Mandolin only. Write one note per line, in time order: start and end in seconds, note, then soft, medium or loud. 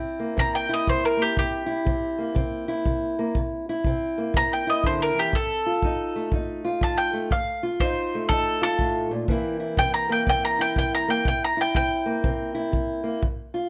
0.39 0.55 A#5 loud
0.55 0.71 G5 medium
0.73 0.89 D#5 medium
0.89 1.05 C5 medium
1.05 1.21 A#4 medium
1.22 1.38 G4 medium
1.39 2.34 G4 medium
4.37 4.52 A#5 loud
4.53 4.68 G5 medium
4.70 4.84 D#5 medium
4.86 5.01 C5 medium
5.02 5.17 A#4 loud
5.19 5.34 G4 medium
5.35 6.30 A4 medium
6.83 6.97 A5 medium
6.98 7.30 G5 medium
7.32 7.79 F5 medium
7.80 8.28 C5 medium
8.29 8.61 A4 loud
8.63 9.11 A4 loud
9.79 9.93 G5 loud
9.94 10.10 A#5 medium
10.12 10.28 G5 medium
10.29 10.44 G5 loud
10.45 10.60 A#5 loud
10.61 10.77 G5 loud
10.78 10.94 G5 medium
10.95 11.10 A#5 medium
11.10 11.26 G5 medium
11.28 11.43 G5 medium
11.44 11.60 A#5 medium
11.61 11.75 G5 medium
11.76 12.72 G5 medium